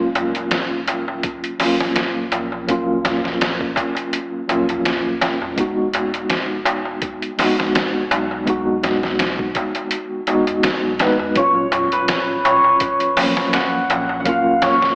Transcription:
Already playing: D#1 F#3 A#3 C#4 F4
0.15 closed hi-hat, darbuka tek, darbuka dum
0.35 closed hi-hat, darbuka tek
0.51 snare, closed hi-hat, darbuka tek
0.87 closed hi-hat, darbuka tek
1.08 darbuka tek
1.23 kick, closed hi-hat, darbuka tek
1.44 closed hi-hat
1.59 D#1 F#3 A#3 C#4, snare, open hi-hat, darbuka tek
1.63 F4
1.80 snare, darbuka tek
1.96 snare, closed hi-hat, darbuka tek
2.32 A#1, closed hi-hat, darbuka tek
2.52 darbuka tek
2.67 F#3 A#3 C#4 F4, kick, closed hi-hat, darbuka tek
3.05 snare, closed hi-hat, darbuka tek, darbuka dum
3.24 snare, darbuka tek
3.41 snare, closed hi-hat, darbuka tek
3.61 kick
3.76 kick, closed hi-hat, darbuka tek
3.95 closed hi-hat, darbuka tek
4.13 closed hi-hat, darbuka tek
4.48 A#1 F#3 A#3 C#4, closed hi-hat, darbuka tek
4.52 F4
4.69 closed hi-hat, darbuka tek, darbuka dum
4.85 snare, closed hi-hat, darbuka tek
5.21 D#1, snare, closed hi-hat, darbuka tek
5.42 darbuka tek, darbuka dum
5.56 E1 G#3 B3 D#4, kick, closed hi-hat, darbuka tek
5.61 F#4
5.93 closed hi-hat, darbuka tek, darbuka dum
6.14 closed hi-hat, darbuka tek
6.30 snare, closed hi-hat, darbuka tek
6.65 closed hi-hat, darbuka tek
6.85 darbuka tek
7.02 kick, closed hi-hat, darbuka tek
7.22 closed hi-hat
7.37 E1 G#3 B3 D#4 F#4, snare, open hi-hat, darbuka tek
7.59 snare, darbuka tek
7.75 snare, closed hi-hat, darbuka tek
8.11 B1, closed hi-hat, darbuka tek
8.31 darbuka tek
8.45 G#3 B3 D#4, kick, closed hi-hat, darbuka tek
8.50 F#4
8.83 snare, closed hi-hat, darbuka tek, darbuka dum
9.03 snare, darbuka tek
9.19 snare, closed hi-hat, darbuka tek
9.39 kick
9.55 kick, closed hi-hat, darbuka tek
9.75 closed hi-hat, darbuka tek
9.91 closed hi-hat, darbuka tek
10.27 G#3 B3 D#4 F#4, closed hi-hat, darbuka tek
10.47 closed hi-hat, darbuka tek, darbuka dum
10.63 snare, closed hi-hat, darbuka tek
10.84 B1
10.99 G#1 G#3 B3 D#4 B4, snare, closed hi-hat, darbuka tek
11.19 darbuka tek, darbuka dum
11.35 D#1 A#2 F#3 C#4 C#5, kick, closed hi-hat, darbuka tek
11.39 F4
11.72 closed hi-hat, darbuka tek, darbuka dum
11.92 B4, closed hi-hat, darbuka tek
12.08 snare, closed hi-hat, darbuka tek
12.45 C#5, closed hi-hat, darbuka tek
12.64 darbuka tek
12.80 kick, closed hi-hat, darbuka tek
13.00 closed hi-hat
13.16 D#1 F#3 A#3 C#4, snare, open hi-hat, darbuka tek
13.20 F3
13.37 snare, darbuka tek
13.53 F#5, snare, closed hi-hat, darbuka tek
13.89 A#1, closed hi-hat, darbuka tek
14.09 darbuka tek
14.20 F#5
14.25 F#3 A#3 C#4 F5, kick, closed hi-hat, darbuka tek
14.29 F4
14.62 C#5, snare, closed hi-hat, darbuka tek, darbuka dum
14.82 snare, darbuka tek

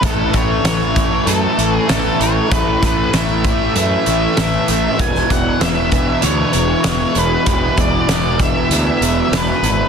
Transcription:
0.02 A1 A2 E3 A3 A4, kick, closed hi-hat
0.33 A1 E3 A3 C#5, kick, closed hi-hat
0.64 A1 A2 E3 A3 C#5, snare, closed hi-hat
0.95 E3 A3, kick, closed hi-hat
1.26 F#2 A2 E3 A3 A4, closed hi-hat
1.57 A1 E3 A3, closed hi-hat
1.73 G#4
1.88 A1 A2 E3 A3 A4, snare, closed hi-hat
2.20 A1 E3 A3 C#5, closed hi-hat
2.50 A1 A2 E3 A3 B4, kick, closed hi-hat
2.81 A1 E3 A3, kick, closed hi-hat
2.85 B4
3.13 A1 A2 E3 A3 E5, snare, closed hi-hat
3.44 E3 A3, kick, closed hi-hat
3.75 F#2 A2 E3 A3 E5, closed hi-hat
4.06 A1 E3 A3, closed hi-hat
4.37 A1 A2 E3 A3 E5, snare, closed hi-hat
4.68 A1 E3 A3, closed hi-hat
4.98 E1 E2 B2 E3 G#5, kick, closed hi-hat
5.15 snare
5.30 E1 B2 E3 F#5, kick, closed hi-hat
5.60 E1 E2 B2 E3 E5, snare, closed hi-hat
5.91 B2 E3, kick, closed hi-hat
6.21 D2 E2 B2 E3 C#5, closed hi-hat
6.53 E1 B2 E3, closed hi-hat
6.84 E1 E2 B2 E3, snare, closed hi-hat
7.15 E1 B2 E3 B4, closed hi-hat
7.46 E1 E2 B2 E3 B4, kick, closed hi-hat
7.77 E1 B2 E3 D5, kick, closed hi-hat
8.07 E1 E2 B2 E3, snare, closed hi-hat
8.39 B2 E3 E5, kick, closed hi-hat
8.69 D2 E2 B2, closed hi-hat
8.74 E3 E5
9.01 E1 E3, closed hi-hat
9.05 B2
9.31 E1 E2 B2, snare, closed hi-hat
9.36 E3 B4
9.62 G#1 B2 E3, closed hi-hat

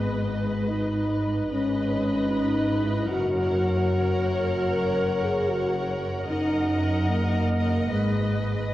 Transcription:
Already playing: G#1 G#2 G#3 B4 D#5
0.70 D#4
1.49 G#1 G#2 C#4 B4 D#5
2.29 D#4
2.83 E4
3.10 F#1 F#2 F#4 A#4 C#5 F#5
4.71 A#4
5.23 G#4
5.49 F#4
6.29 F#1 F#2 D#4 A#4 D#5 F#5
7.09 A#3
7.90 G#1 G#2 G#3 B4 D#5
8.70 D#5

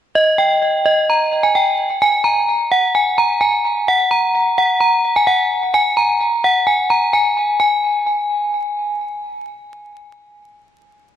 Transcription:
0.15 D#5
0.38 G5
0.86 D#5
1.10 A#5
1.43 G#5
1.55 G5
2.02 G#5
2.24 A#5
2.72 F#5
2.95 G#5
3.18 A#5
3.41 G#5
3.88 F#5
4.11 A#5
4.58 F#5
4.80 A#5
5.16 G#5
5.27 F#5
5.74 G#5
5.97 A#5
6.44 F#5
6.67 G#5
6.90 A#5
7.13 G#5
7.60 G#5

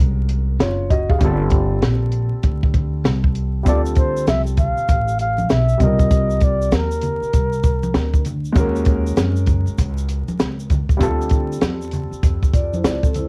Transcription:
Already playing: G#3 C#4 F#4 A#4
0.00 C2
0.29 closed hi-hat
0.59 F#1 F4 C#5, snare, closed hi-hat
0.90 F#4 D#5, kick, closed hi-hat
1.10 G#4 F5, kick
1.19 G1 G3 C4 F4, kick, closed hi-hat
1.25 A4
1.50 kick, closed hi-hat
1.82 A#1, snare, closed hi-hat
2.12 closed hi-hat
2.32 muted upright bass stroke
2.43 D2, kick, closed hi-hat
2.63 kick
2.74 kick, closed hi-hat
3.04 C2, snare, closed hi-hat
3.24 kick
3.35 closed hi-hat
3.63 D2 G3 C4, kick, closed hi-hat, shaker
3.67 F4 A4 D5
3.86 shaker
3.95 C5, kick, closed hi-hat, shaker
4.17 shaker
4.27 C2 E5, snare, closed hi-hat, high conga, shaker
4.47 shaker
4.57 F5, kick, closed hi-hat, low conga, shaker
4.77 muted upright bass stroke, shaker
4.88 A1, kick, closed hi-hat, shaker
5.08 shaker
5.19 F5, closed hi-hat, shaker
5.38 high conga, shaker
5.49 B1 E5, snare, closed hi-hat, shaker
5.69 shaker
5.78 C2 G3 C4, kick, closed hi-hat, low conga, shaker
5.82 F4 A#4 D#5
5.99 kick, shaker
6.11 kick, closed hi-hat, shaker
6.30 shaker
6.40 D5, kick, closed hi-hat, shaker
6.62 shaker
6.71 D#2 A#4, snare, closed hi-hat, high conga, shaker
6.91 shaker
7.01 closed hi-hat, low conga, shaker
7.21 muted upright bass stroke, shaker
7.33 C2, kick, closed hi-hat, shaker
7.52 shaker
7.63 kick, closed hi-hat, shaker
7.83 high conga, shaker
7.94 D2, snare, closed hi-hat, shaker
8.14 kick, shaker
8.25 closed hi-hat, low conga, shaker
8.45 shaker
8.53 D#2 G#3 C#4 F#4, kick, closed hi-hat
8.57 A#4, shaker
8.76 shaker
8.85 kick, closed hi-hat, shaker
9.07 shaker
9.17 F#2, snare, closed hi-hat, high conga, shaker
9.36 shaker
9.46 kick, closed hi-hat, low conga, shaker
9.67 muted upright bass stroke, shaker
9.78 C#2, kick, closed hi-hat, shaker
9.98 shaker
10.09 closed hi-hat, shaker
10.28 muted upright bass stroke, high conga, shaker
10.39 C#2, snare, closed hi-hat, shaker
10.59 shaker
10.70 kick, closed hi-hat, low conga, shaker
10.89 kick, shaker
10.97 D2 G3 C4 F4, kick, closed hi-hat
11.02 A4, shaker
11.21 shaker
11.29 kick, closed hi-hat, shaker
11.53 shaker
11.61 E2, snare, closed hi-hat, high conga, shaker
11.82 shaker
11.92 closed hi-hat, low conga, shaker
12.11 muted upright bass stroke, shaker
12.23 F2, kick, closed hi-hat, shaker
12.43 kick, shaker
12.54 F4 D5, kick, closed hi-hat, shaker
12.74 E4 C5, high conga, shaker
12.84 C#2 F4 D5, snare, closed hi-hat, shaker
13.03 C4 A4, kick, shaker
13.15 E4 C5, closed hi-hat, low conga, shaker

